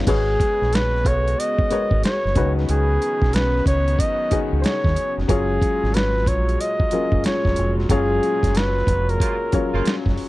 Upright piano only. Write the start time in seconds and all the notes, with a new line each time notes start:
0.07 G#3 F#4 G#4 B4 C#5
1.70 G#3 F#4 A#4 B4 C#5
2.36 C#3 C#4 D#4 F#4 B4
4.31 C#3 C#4 D#4 F#4 G#4
5.28 F#3 C#4 F4 G#4 C#5
6.92 F#3 C#4 F4 G#4 A#4
7.89 F#3 C#4 F4 G#4 C#5
9.53 F#3 C#4 F4 G#4 C#5